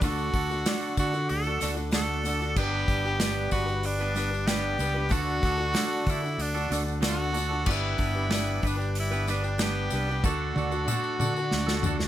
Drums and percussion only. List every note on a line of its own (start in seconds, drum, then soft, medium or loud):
0.01 kick loud
0.01 open hi-hat medium
0.01 tambourine medium
0.18 tambourine soft
0.33 kick medium
0.33 open hi-hat medium
0.33 tambourine soft
0.51 tambourine soft
0.66 snare loud
0.66 open hi-hat medium
0.66 tambourine loud
0.82 tambourine soft
0.97 kick medium
0.97 open hi-hat medium
0.97 tambourine medium
1.14 tambourine soft
1.29 open hi-hat medium
1.29 tambourine soft
1.44 tambourine soft
1.61 snare soft
1.61 open hi-hat medium
1.61 tambourine medium
1.77 tambourine soft
1.92 snare loud
1.92 open hi-hat medium
1.92 tambourine loud
2.25 open hi-hat medium
2.25 tambourine medium
2.42 tambourine soft
2.56 kick loud
2.56 crash loud
2.56 tambourine medium
2.88 kick medium
2.88 open hi-hat medium
2.88 tambourine soft
3.20 snare loud
3.20 open hi-hat medium
3.20 tambourine medium
3.51 kick medium
3.51 open hi-hat medium
3.51 tambourine medium
3.68 tambourine soft
3.83 open hi-hat medium
3.83 tambourine soft
4.00 tambourine soft
4.16 snare soft
4.16 open hi-hat medium
4.16 tambourine medium
4.34 tambourine soft
4.47 snare loud
4.47 open hi-hat medium
4.47 tambourine loud
4.79 open hi-hat medium
4.79 tambourine medium
5.11 kick loud
5.11 open hi-hat medium
5.11 tambourine medium
5.43 kick medium
5.43 open hi-hat medium
5.43 tambourine soft
5.75 snare loud
5.75 open hi-hat medium
5.75 tambourine medium
6.06 kick medium
6.06 open hi-hat medium
6.06 tambourine medium
6.26 tambourine soft
6.39 open hi-hat medium
6.39 tambourine soft
6.57 tambourine soft
6.72 snare soft
6.72 open hi-hat medium
6.72 tambourine medium
6.88 tambourine soft
7.03 snare loud
7.03 open hi-hat medium
7.03 tambourine loud
7.34 open hi-hat medium
7.34 tambourine medium
7.66 kick loud
7.66 crash medium
7.71 tambourine medium
7.98 kick medium
7.98 open hi-hat medium
8.03 tambourine soft
8.31 snare loud
8.31 open hi-hat medium
8.31 tambourine medium
8.62 kick medium
8.62 open hi-hat medium
8.67 tambourine medium
8.81 tambourine soft
8.95 open hi-hat medium
8.95 tambourine soft
9.13 tambourine soft
9.27 snare soft
9.27 open hi-hat medium
9.27 tambourine medium
9.44 tambourine soft
9.59 snare loud
9.59 open hi-hat medium
9.59 tambourine loud
9.90 open hi-hat medium
9.90 tambourine medium
10.24 kick loud
10.24 high tom medium
10.24 tambourine medium
10.56 high tom medium
10.56 tambourine soft
10.72 tambourine soft
10.88 mid tom medium
10.88 tambourine loud
11.04 tambourine soft
11.20 mid tom medium
11.20 tambourine medium
11.36 tambourine soft
11.51 snare medium
11.51 tambourine soft
11.68 snare medium
11.68 tambourine soft
11.83 mid tom loud
11.83 tambourine medium
12.00 snare medium